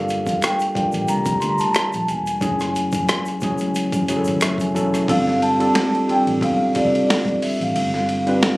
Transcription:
Already playing: fingered electric bass G1, tine electric piano G3 A#3 D4 F4 A4, vibraphone F5
0.09 closed hi-hat, shaker
0.26 kick, closed hi-hat, shaker
0.42 vibraphone G5, finger snap, cross-stick, closed hi-hat, shaker
0.59 closed hi-hat, shaker
0.75 tine electric piano G3 A#3 D4 F4 G4, muted fingered electric bass stroke, kick, closed hi-hat
0.92 fingered electric bass A1, closed hi-hat, shaker
1.08 fingered electric bass C2, vibraphone A#5, closed hi-hat, shaker
1.25 kick, closed hi-hat, shaker
1.40 fingered electric bass D2, vibraphone C6, closed hi-hat, shaker
1.49 vibraphone A#5
1.58 vibraphone A5, closed hi-hat, shaker
1.68 vibraphone A#5
1.75 vibraphone A5, finger snap, cross-stick, closed hi-hat, shaker
1.93 fingered electric bass A#1, closed hi-hat, shaker
2.08 fingered electric bass E1, vibraphone G#5, closed hi-hat, shaker
2.26 closed hi-hat, shaker
2.41 fingered electric bass F#1, tine electric piano F#3 A3 C#4 E4 G#4, kick, closed hi-hat, shaker
2.60 cross-stick, closed hi-hat, shaker
2.76 closed hi-hat, shaker
2.92 kick, closed hi-hat, shaker
3.09 finger snap, cross-stick, closed hi-hat, shaker
3.25 closed hi-hat, shaker
3.41 fingered electric bass C#2, tine electric piano F#3 A3 C#4 E4 G#4, kick, closed hi-hat, shaker
3.58 closed hi-hat, shaker
3.75 closed hi-hat, shaker
3.92 fingered electric bass F#2, kick, closed hi-hat, shaker
4.08 fingered electric bass F#1, tine electric piano F#3 A3 C#4 E4 G#4, closed hi-hat, shaker
4.17 tine electric piano A4
4.24 fingered electric bass G#1, closed hi-hat, shaker
4.41 fingered electric bass F#1, tine electric piano E5, finger snap, cross-stick, closed hi-hat, shaker
4.58 tine electric piano G#5, kick, closed hi-hat, shaker
4.74 fingered electric bass E1, tine electric piano F#3 A3 C#4 E4 A4 A5, closed hi-hat, shaker
4.94 cross-stick, closed hi-hat, shaker
5.08 fingered electric bass G1, tine electric piano G3 C4 D4 F4 A4, vibraphone F5, kick, ride
5.27 snare
5.42 vibraphone A5, ride
5.60 tine electric piano G3 C4 D4 F4 A4, ride
5.75 snare, ride
5.95 ride
6.08 tine electric piano G3 C4 D4 F4 A4, vibraphone G5, muted fingered electric bass stroke, ride
6.27 fingered electric bass A1, ride
6.41 fingered electric bass B1, vibraphone F5, kick, ride
6.75 fingered electric bass C2, tine electric piano G3 C4 D4 F4 A4, vibraphone D5, kick, ride
6.95 ride
7.10 snare, ride
7.25 kick, ride
7.42 vibraphone E5, muted fingered electric bass stroke, open hi-hat, ride
7.61 fingered electric bass A1, vibraphone F5, ride
7.75 fingered electric bass G1, ride
7.94 snare
8.09 ride
8.27 tine electric piano G3 C4 D4 F4 B4, ride
8.43 snare, ride

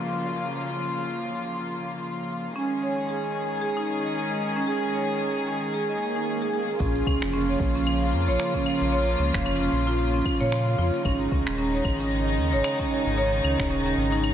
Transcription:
Already playing: string section C#3 F3 A#3 F4, downlifter
2.56 string section D#3 G#3 C#4 G#4, marimba C#4
2.82 marimba C#5
3.09 marimba G#4
3.35 marimba C#6
3.61 marimba G#4
3.77 marimba D#4
4.04 marimba D#5
4.30 marimba D#5
4.56 marimba C#4
4.67 marimba G#4
4.94 marimba C#5
5.21 marimba G#4
5.47 marimba C#6
5.74 marimba G#4, swell
5.89 marimba D#5
6.16 marimba D#4
6.42 marimba G#4
6.53 marimba G#4
6.68 marimba G#4
6.80 analog synth bass A#1, string section C#3 F3 A#3 F4, marimba C#4, kick, closed hi-hat, shaker
6.96 closed hi-hat, shaker
7.07 analog synth bass C#2, marimba C#4, kick, claves
7.22 analog synth bass F1, finger snap, closed hi-hat, shaker
7.33 marimba C#4, closed hi-hat, shaker
7.49 marimba C#5, shaker
7.60 analog synth bass A#1, kick, closed hi-hat
7.75 marimba C#4, closed hi-hat, shaker
7.87 closed hi-hat, claves, shaker
8.02 marimba F5, shaker
8.13 analog synth bass F2, closed hi-hat
8.28 analog synth bass A#1, marimba C#5, closed hi-hat, shaker
8.40 finger snap, closed hi-hat, shaker
8.54 marimba C#4, kick, shaker
8.66 marimba F5, claves
8.81 analog synth bass A#1, closed hi-hat, shaker
8.92 marimba C#5, closed hi-hat, shaker
9.08 closed hi-hat, shaker
9.19 analog synth bass C#2, marimba C#4
9.34 analog synth bass F1, finger snap, kick, closed hi-hat, shaker
9.46 marimba C#4, closed hi-hat, claves, shaker
9.60 marimba C#4, shaker
9.72 analog synth bass A#1, closed hi-hat
9.87 marimba F4, closed hi-hat, shaker
9.99 closed hi-hat, shaker
10.14 marimba C#4, shaker
10.25 kick, closed hi-hat, claves
10.40 analog synth bass A#2, marimba C#5, closed hi-hat, shaker
10.52 finger snap, closed hi-hat, shaker
10.67 marimba F5, shaker
10.78 analog synth bass F2, marimba F4
10.94 closed hi-hat, shaker
11.05 analog synth bass G#1, string section C#3 D#3 G#3 D#4, marimba C#4, kick, closed hi-hat, claves, shaker
11.20 closed hi-hat, shaker
11.31 analog synth bass C#2, marimba C#4, kick
11.47 analog synth bass D#1, finger snap, closed hi-hat, shaker
11.58 marimba C#4, closed hi-hat, shaker
11.74 marimba C#5, shaker
11.85 analog synth bass G#1, kick, closed hi-hat, claves
12.00 marimba C#4, closed hi-hat, shaker
12.11 closed hi-hat, shaker
12.26 marimba D#5, shaker
12.38 analog synth bass D#2, closed hi-hat
12.53 analog synth bass G#1, marimba C#5, closed hi-hat, shaker
12.64 finger snap, closed hi-hat, claves, shaker
12.79 marimba C#4, kick, shaker
12.91 marimba D#5
13.06 analog synth bass G#1, closed hi-hat, shaker
13.18 marimba C#5, closed hi-hat, shaker
13.33 closed hi-hat, shaker
13.44 analog synth bass C#2, marimba C#4, claves
13.59 analog synth bass D#1, finger snap, kick, closed hi-hat, shaker
13.70 marimba C#4, closed hi-hat, shaker
13.86 marimba C#4, shaker
13.97 analog synth bass G#1, closed hi-hat
14.12 marimba D#4, closed hi-hat, shaker
14.24 closed hi-hat, claves, shaker

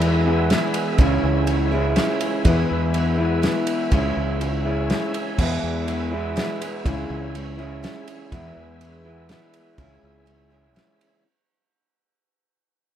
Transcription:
Already playing: clean electric guitar E2 B2 E3 G#3 B3 E4, fingered electric bass E2, twelve-string acoustic guitar E3, tonewheel organ B4 E5 G#5 E6
0.01 twelve-string acoustic guitar G#3 B3 E4 G#4, ride
0.25 clean electric guitar E2 B2 E3 G#3 B3 E4
0.50 twelve-string acoustic guitar G#3 B3 E4 G#4, snare, ride
0.74 twelve-string acoustic guitar B3 E4 G#4, ride
0.98 fingered electric bass C#2, clean electric guitar C#3 E3 G#3 C#4 E4, twelve-string acoustic guitar C#3 G#3 C#4 E4 G#4, tonewheel organ C#5, kick, ride
1.24 fingered electric bass C#2
1.47 twelve-string acoustic guitar G#3 C#4 E4 G#4, ride
1.71 clean electric guitar C#3 E3 G#3 C#4 E4, twelve-string acoustic guitar C#4 E4 G#4
1.96 twelve-string acoustic guitar G#3 C#4 E4 G#4, snare, ride
2.20 twelve-string acoustic guitar C#4 E4 G#4, ride
2.45 clean electric guitar E2 B2 E3 G#3 B3 E4, fingered electric bass E2, twelve-string acoustic guitar E3 G#3 B3 E4 G#4, tonewheel organ B4 E5 E6, kick, ride
2.71 fingered electric bass E2
2.94 twelve-string acoustic guitar G#3 B3 E4 G#4, ride
3.18 clean electric guitar E2 B2 E3 G#3 B3 E4
3.42 twelve-string acoustic guitar G#3 B3 E4 G#4, snare, ride
3.67 ride
3.91 fingered electric bass C#2, twelve-string acoustic guitar C#3 G#3 C#4 E4 G#4, clean electric guitar C#3 E3 G#3 C#4, tonewheel organ C#5 E5, kick, ride
3.95 clean electric guitar E4
4.17 fingered electric bass C#2
4.41 twelve-string acoustic guitar G#3 C#4 E4 G#4, ride
4.65 clean electric guitar C#3 E3 G#3 C#4 E4
4.90 twelve-string acoustic guitar G#3 C#4 E4 G#4, snare, ride
5.14 twelve-string acoustic guitar C#4 E4 G#4, ride
5.38 fingered electric bass E2, clean electric guitar E2 B2 E3 G#3 B3 E4, twelve-string acoustic guitar E3 G#3 B3 E4 G#4, tonewheel organ B4, kick, crash
5.63 fingered electric bass E2
5.87 twelve-string acoustic guitar G#3 B3 E4 G#4, ride
6.11 clean electric guitar E2 B2 E3 G#3 B3 E4
6.36 twelve-string acoustic guitar G#3 B3 E4 G#4, snare, ride
6.61 twelve-string acoustic guitar B3 E4 G#4, ride
6.85 fingered electric bass C#2, clean electric guitar C#3 E3 G#3 C#4 E4, twelve-string acoustic guitar C#3 G#3 C#4 E4 G#4, tonewheel organ C#5 E5, kick, ride
7.10 fingered electric bass C#2
7.35 twelve-string acoustic guitar G#3 C#4 E4 G#4, ride
7.58 clean electric guitar C#3 E3 G#3 C#4 E4, twelve-string acoustic guitar C#4 E4 G#4
7.83 twelve-string acoustic guitar G#3 C#4 E4 G#4, snare, ride
8.08 twelve-string acoustic guitar C#4 E4 G#4, ride
8.31 clean electric guitar E2 B2 E3 G#3 B3 E4, fingered electric bass E2, twelve-string acoustic guitar E3 G#3 B3 E4 G#4, tonewheel organ B4 G#5, kick, ride
8.57 fingered electric bass E2
8.81 twelve-string acoustic guitar G#3 B3 E4 G#4, ride
9.05 clean electric guitar E2 B2 E3 G#3 B3 E4
9.29 twelve-string acoustic guitar G#3 B3 E4 G#4, snare, ride
9.53 twelve-string acoustic guitar E4 G#4, ride
9.58 twelve-string acoustic guitar B3
9.78 fingered electric bass C#2, twelve-string acoustic guitar C#3 G#3 C#4 E4 G#4, clean electric guitar C#3 E3 G#3 C#4 E4, tonewheel organ C#5 E6, kick, ride
10.03 fingered electric bass C#2
10.26 twelve-string acoustic guitar G#3 C#4 E4 G#4, ride
10.50 clean electric guitar C#3 E3 G#3 C#4 E4, twelve-string acoustic guitar C#4 E4 G#4
10.74 twelve-string acoustic guitar G#3 C#4 E4 G#4, snare, ride
10.99 twelve-string acoustic guitar C#4 E4 G#4, ride

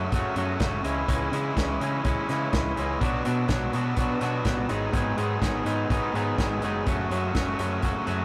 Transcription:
Already playing: clean electric guitar F#2 C#3 F#3 A3 C#4 F#4
0.12 picked electric bass F#1, clean electric guitar F#2 C#3 F#3 A3 C#4 F#4, kick, closed hi-hat
0.36 picked electric bass F#2, clean electric guitar F#2 C#3 F#3 A3 C#4 F#4, closed hi-hat
0.60 picked electric bass F#1, clean electric guitar F#2 C#3 F#3 A3 C#4 F#4, kick, snare, closed hi-hat
0.83 picked electric bass C#2, clean electric guitar C#3 E3 G#3 C#4 E4, closed hi-hat
1.08 picked electric bass C#2, clean electric guitar C#3 E3 G#3 C#4 E4, kick, closed hi-hat
1.31 picked electric bass C#3, clean electric guitar C#3 E3 G#3 C#4 E4, closed hi-hat
1.55 picked electric bass C#2, clean electric guitar C#3 E3 G#3 C#4 E4, kick, snare, closed hi-hat
1.80 clean electric guitar C#3 E3 G#3 C#4 E4, picked electric bass C#3, closed hi-hat
2.03 picked electric bass C#2, clean electric guitar C#3 E3 G#3 C#4 E4, kick, closed hi-hat
2.28 clean electric guitar C#3 E3 G#3 C#4 E4, picked electric bass C#3, snare, closed hi-hat
2.52 picked electric bass C#2, clean electric guitar C#3 E3 G#3 C#4 E4, kick, snare, closed hi-hat
2.75 picked electric bass C#2, clean electric guitar C#3 E3 G#3 C#4 E4, closed hi-hat
3.00 picked electric bass B1, clean electric guitar B2 F#3 B3 D4 F#4, kick, closed hi-hat
3.24 clean electric guitar B2 F#3 B3 D4 F#4, picked electric bass B2, closed hi-hat
3.47 picked electric bass B1, clean electric guitar B2 F#3 B3 D4 F#4, kick, snare, closed hi-hat
3.72 clean electric guitar B2 F#3 B3 D4 F#4, picked electric bass B2, closed hi-hat
3.96 picked electric bass B1, clean electric guitar B2 F#3 B3 D4 F#4, kick, closed hi-hat
4.21 clean electric guitar B2 F#3 B3 D4 F#4, picked electric bass B2, snare, closed hi-hat
4.45 picked electric bass A1, clean electric guitar B2 F#3 B3 D4 F#4, kick, snare, closed hi-hat
4.68 picked electric bass G#1, clean electric guitar G#2 D#3 F#3 B3 D#4 G#4, overdriven electric guitar G#3, closed hi-hat
4.91 picked electric bass G#1, clean electric guitar G#2 D#3 F#3 B3 D#4 G#4, kick, closed hi-hat
4.95 overdriven electric guitar G#3
5.16 clean electric guitar G#2 D#3 F#3 B3 D#4 G#4, picked electric bass G#2, overdriven electric guitar G#3, closed hi-hat
5.40 picked electric bass G#1, clean electric guitar G#2 D#3 F#3 B3 D#4 G#4, overdriven electric guitar G#3, kick, snare, closed hi-hat
5.64 clean electric guitar G#2 D#3 F#3 B3 D#4 G#4, picked electric bass G#2, overdriven electric guitar G#3, closed hi-hat
5.89 picked electric bass G#1, clean electric guitar G#2 D#3 F#3 B3 D#4 G#4, overdriven electric guitar G#3, kick, closed hi-hat
6.13 clean electric guitar G#2 D#3 F#3 B3 D#4 G#4, picked electric bass G#2, overdriven electric guitar G#3, closed hi-hat
6.37 picked electric bass G#1, clean electric guitar G#2 D#3 F#3 B3 D#4 G#4, overdriven electric guitar G#3, kick, snare, closed hi-hat
6.62 picked electric bass F#1, clean electric guitar G#2 D#3 F#3 B3 D#4 G#4, overdriven electric guitar G#3, closed hi-hat
6.87 picked electric bass F#1, clean electric guitar F#2 C#3 F#3 A3 C#4 F#4, kick, closed hi-hat
7.10 clean electric guitar F#2 C#3 F#3 A3 C#4 F#4, picked electric bass F#2, closed hi-hat
7.34 picked electric bass F#1, clean electric guitar F#2 C#3 F#3 A3 C#4 F#4, kick, snare, closed hi-hat
7.58 clean electric guitar F#2 C#3 F#3 A3 C#4 F#4, picked electric bass F#2, closed hi-hat
7.82 picked electric bass F#1, clean electric guitar F#2 C#3 F#3 A3 C#4 F#4, kick, closed hi-hat
8.05 clean electric guitar F#2 C#3 F#3 A3 C#4 F#4, picked electric bass F#2, closed hi-hat

